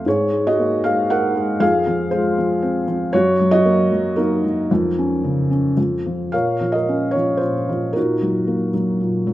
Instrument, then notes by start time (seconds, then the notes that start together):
felt piano
0.06 G#2 G#4 C#5
0.33 G#3
0.47 F#4 D#5
0.59 A#3
0.84 G#3 G#4 F5
1.10 D#4 A#4 F#5
1.35 G#3
1.60 F2 G#4 F5
1.87 F3
2.11 G#3 F4 C5
2.38 F3
2.62 C4
2.88 F3
3.13 F#2 F#4 C#5
3.40 F#3
3.51 F#4 D#5
3.65 A#3
3.92 F#3
4.16 A#3 D#4 A#4
4.44 F#3
4.71 F2
4.99 C#4
5.24 C#3
5.51 C#4
5.77 F2
6.06 F3
6.32 A#2 A#4 C#5 F5
6.61 F3
6.72 A#4 D#5
6.89 C#4
7.11 F3 C#5
7.37 F4 C5
7.43 A#2
7.69 F3
7.93 A#2 D#4 F#4 A#4
8.22 F#3
8.47 A#3
8.74 F#3
9.01 A#2
9.27 F#3